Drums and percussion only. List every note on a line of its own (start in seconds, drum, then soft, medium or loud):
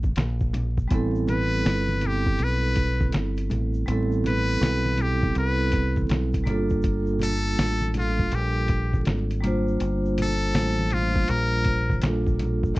0.03 kick medium
0.03 high conga medium
0.03 shaker soft
0.16 snare loud
0.16 closed hi-hat loud
0.16 shaker medium
0.40 kick medium
0.40 shaker soft
0.53 closed hi-hat medium
0.53 low conga medium
0.53 shaker soft
0.78 kick medium
0.78 shaker soft
0.91 kick loud
0.91 closed hi-hat medium
0.91 shaker medium
1.15 shaker soft
1.28 closed hi-hat medium
1.28 high conga soft
1.28 low conga medium
1.28 shaker soft
1.52 shaker soft
1.64 snare loud
1.64 closed hi-hat loud
1.64 shaker medium
1.88 high conga medium
1.88 shaker soft
2.01 closed hi-hat medium
2.01 low conga medium
2.01 shaker soft
2.26 kick medium
2.26 high conga soft
2.26 shaker soft
2.37 closed hi-hat medium
2.37 shaker medium
2.62 shaker soft
2.76 kick medium
2.76 closed hi-hat medium
2.76 shaker soft
3.01 kick medium
3.01 high conga medium
3.01 shaker soft
3.12 snare loud
3.12 closed hi-hat medium
3.12 shaker medium
3.37 closed hi-hat medium
3.37 shaker soft
3.50 closed hi-hat medium
3.50 low conga medium
3.50 shaker soft
3.74 shaker soft
3.87 closed hi-hat medium
3.87 shaker medium
4.12 shaker soft
4.24 closed hi-hat medium
4.24 high conga soft
4.24 low conga medium
4.24 shaker soft
4.48 shaker medium
4.61 snare loud
4.61 closed hi-hat loud
4.61 shaker medium
4.85 high conga medium
4.85 shaker soft
4.98 closed hi-hat medium
4.98 low conga medium
4.98 shaker soft
5.22 kick medium
5.22 high conga soft
5.22 shaker soft
5.34 closed hi-hat medium
5.34 shaker medium
5.59 shaker soft
5.72 kick medium
5.72 closed hi-hat medium
5.72 shaker soft
5.96 kick medium
5.96 high conga medium
5.96 shaker soft
6.09 snare loud
6.09 closed hi-hat medium
6.09 shaker medium
6.33 kick medium
6.33 closed hi-hat medium
6.33 shaker soft
6.46 closed hi-hat medium
6.46 low conga medium
6.46 shaker soft
6.69 kick medium
6.69 shaker soft
6.82 kick loud
6.82 closed hi-hat medium
6.82 shaker medium
7.07 shaker soft
7.19 closed hi-hat medium
7.19 high conga soft
7.19 low conga medium
7.19 shaker soft
7.44 shaker soft
7.57 snare loud
7.57 closed hi-hat loud
7.57 shaker medium
7.81 high conga medium
7.81 shaker medium
7.94 closed hi-hat medium
7.94 low conga medium
7.94 shaker soft
8.19 kick medium
8.19 high conga soft
8.19 shaker soft
8.30 closed hi-hat medium
8.30 shaker medium
8.56 shaker medium
8.68 kick medium
8.68 closed hi-hat medium
8.68 shaker soft
8.93 kick medium
8.93 high conga medium
8.93 shaker soft
9.05 snare loud
9.05 closed hi-hat medium
9.05 shaker medium
9.30 closed hi-hat medium
9.30 shaker soft
9.44 closed hi-hat medium
9.44 low conga medium
9.44 shaker soft
9.68 shaker soft
9.80 closed hi-hat medium
9.80 shaker medium
10.05 shaker soft
10.18 closed hi-hat medium
10.18 high conga soft
10.18 low conga medium
10.18 shaker soft
10.43 shaker medium
10.55 snare loud
10.55 closed hi-hat loud
10.55 shaker medium
10.79 high conga medium
10.79 shaker medium
10.91 closed hi-hat medium
10.91 low conga medium
10.91 shaker soft
11.16 kick medium
11.16 high conga soft
11.16 shaker soft
11.28 closed hi-hat medium
11.28 shaker medium
11.54 shaker medium
11.64 kick medium
11.64 closed hi-hat medium
11.64 shaker soft
11.90 kick medium
11.90 high conga medium
11.90 shaker soft
12.02 snare loud
12.02 closed hi-hat loud
12.02 shaker medium
12.27 kick medium
12.27 shaker soft
12.39 closed hi-hat medium
12.39 low conga medium
12.39 shaker soft
12.63 kick medium
12.63 shaker medium
12.76 closed hi-hat medium